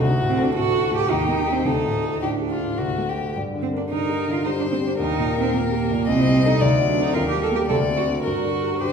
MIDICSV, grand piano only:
0, 0, Header, 1, 2, 480
1, 0, Start_track
1, 0, Tempo, 542986
1, 13, Time_signature, 3, 2, 24, 8
1, 973, Tempo, 560748
1, 3373, Tempo, 541028
1, 6733, Tempo, 562852
1, 7785, End_track
2, 0, Start_track
2, 0, Title_t, "Grand piano"
2, 0, Program_c, 0, 0
2, 0, Control_c, 0, 64, 127
2, 13, Note_on_c, 0, 38, 51
2, 29, Control_c, 0, 64, 0
2, 161, Control_c, 0, 64, 127
2, 176, Note_on_c, 0, 45, 42
2, 333, Note_on_c, 0, 69, 43
2, 428, Note_off_c, 0, 45, 0
2, 490, Note_on_c, 0, 45, 48
2, 587, Note_off_c, 0, 69, 0
2, 646, Note_on_c, 0, 66, 45
2, 746, Note_off_c, 0, 45, 0
2, 803, Note_on_c, 0, 45, 40
2, 906, Note_off_c, 0, 66, 0
2, 944, Note_off_c, 0, 38, 0
2, 964, Note_on_c, 0, 39, 51
2, 969, Note_off_c, 0, 45, 0
2, 990, Control_c, 0, 64, 0
2, 1126, Note_on_c, 0, 58, 39
2, 1142, Control_c, 0, 64, 127
2, 1289, Note_on_c, 0, 67, 41
2, 1383, Note_off_c, 0, 58, 0
2, 1431, Note_off_c, 0, 39, 0
2, 1434, Note_off_c, 0, 67, 0
2, 1444, Note_on_c, 0, 38, 45
2, 1468, Control_c, 0, 64, 0
2, 1605, Control_c, 0, 64, 127
2, 1608, Note_on_c, 0, 45, 33
2, 1773, Note_on_c, 0, 69, 34
2, 1868, Note_off_c, 0, 45, 0
2, 1937, Note_on_c, 0, 45, 32
2, 2030, Note_off_c, 0, 69, 0
2, 2095, Note_on_c, 0, 67, 32
2, 2193, Note_off_c, 0, 45, 0
2, 2256, Note_on_c, 0, 45, 32
2, 2352, Note_off_c, 0, 67, 0
2, 2384, Note_off_c, 0, 38, 0
2, 2416, Note_on_c, 0, 38, 38
2, 2417, Note_off_c, 0, 45, 0
2, 2434, Control_c, 0, 64, 0
2, 2575, Control_c, 0, 64, 127
2, 2581, Note_on_c, 0, 57, 26
2, 2744, Note_on_c, 0, 66, 27
2, 2746, Note_on_c, 0, 69, 30
2, 2836, Note_off_c, 0, 57, 0
2, 2883, Note_off_c, 0, 38, 0
2, 2885, Note_off_c, 0, 66, 0
2, 2886, Note_off_c, 0, 69, 0
2, 2905, Note_on_c, 0, 43, 38
2, 2915, Control_c, 0, 64, 0
2, 3063, Note_on_c, 0, 50, 35
2, 3066, Control_c, 0, 64, 127
2, 3218, Note_on_c, 0, 70, 36
2, 3314, Note_off_c, 0, 50, 0
2, 3376, Note_on_c, 0, 50, 36
2, 3472, Note_off_c, 0, 70, 0
2, 3538, Note_on_c, 0, 67, 31
2, 3634, Note_off_c, 0, 50, 0
2, 3700, Note_on_c, 0, 50, 38
2, 3794, Note_off_c, 0, 67, 0
2, 3861, Note_on_c, 0, 55, 39
2, 3955, Note_off_c, 0, 50, 0
2, 4020, Note_on_c, 0, 50, 30
2, 4116, Note_off_c, 0, 55, 0
2, 4178, Note_on_c, 0, 67, 37
2, 4276, Note_off_c, 0, 50, 0
2, 4308, Note_off_c, 0, 43, 0
2, 4339, Note_off_c, 0, 67, 0
2, 4342, Note_on_c, 0, 39, 50
2, 4356, Control_c, 0, 64, 0
2, 4502, Control_c, 0, 64, 127
2, 4503, Note_on_c, 0, 46, 40
2, 4668, Note_on_c, 0, 70, 43
2, 4759, Note_off_c, 0, 46, 0
2, 4823, Note_on_c, 0, 46, 39
2, 4922, Note_off_c, 0, 70, 0
2, 4985, Note_on_c, 0, 67, 42
2, 5080, Note_off_c, 0, 46, 0
2, 5156, Note_on_c, 0, 46, 45
2, 5241, Note_off_c, 0, 67, 0
2, 5275, Note_off_c, 0, 39, 0
2, 5309, Note_on_c, 0, 36, 55
2, 5310, Note_off_c, 0, 46, 0
2, 5319, Control_c, 0, 64, 0
2, 5461, Control_c, 0, 64, 127
2, 5467, Note_on_c, 0, 55, 41
2, 5631, Note_on_c, 0, 63, 39
2, 5636, Note_on_c, 0, 69, 46
2, 5718, Note_off_c, 0, 55, 0
2, 5768, Note_off_c, 0, 36, 0
2, 5769, Note_off_c, 0, 63, 0
2, 5771, Note_off_c, 0, 69, 0
2, 5780, Note_on_c, 0, 38, 59
2, 5794, Control_c, 0, 64, 0
2, 5943, Control_c, 0, 64, 127
2, 5943, Note_on_c, 0, 54, 38
2, 6100, Note_on_c, 0, 60, 41
2, 6105, Note_on_c, 0, 69, 39
2, 6192, Note_off_c, 0, 54, 0
2, 6239, Note_off_c, 0, 38, 0
2, 6240, Note_off_c, 0, 60, 0
2, 6242, Note_off_c, 0, 69, 0
2, 6260, Note_on_c, 0, 39, 52
2, 6270, Control_c, 0, 64, 0
2, 6421, Note_on_c, 0, 55, 38
2, 6434, Control_c, 0, 64, 127
2, 6578, Note_on_c, 0, 58, 40
2, 6580, Note_on_c, 0, 67, 41
2, 6674, Note_off_c, 0, 55, 0
2, 6721, Note_off_c, 0, 58, 0
2, 6723, Note_off_c, 0, 67, 0
2, 6724, Note_off_c, 0, 39, 0
2, 6743, Note_on_c, 0, 38, 53
2, 6751, Control_c, 0, 64, 0
2, 6879, Control_c, 0, 64, 127
2, 6899, Note_on_c, 0, 60, 34
2, 7056, Note_on_c, 0, 62, 31
2, 7058, Note_on_c, 0, 66, 34
2, 7150, Note_off_c, 0, 60, 0
2, 7198, Note_off_c, 0, 62, 0
2, 7198, Note_off_c, 0, 66, 0
2, 7200, Note_off_c, 0, 38, 0
2, 7218, Note_on_c, 0, 43, 39
2, 7227, Control_c, 0, 64, 0
2, 7368, Note_on_c, 0, 50, 33
2, 7382, Control_c, 0, 64, 127
2, 7530, Note_on_c, 0, 67, 29
2, 7628, Note_off_c, 0, 50, 0
2, 7691, Note_on_c, 0, 50, 33
2, 7785, Note_off_c, 0, 43, 0
2, 7785, Note_off_c, 0, 50, 0
2, 7785, Note_off_c, 0, 67, 0
2, 7785, End_track
0, 0, End_of_file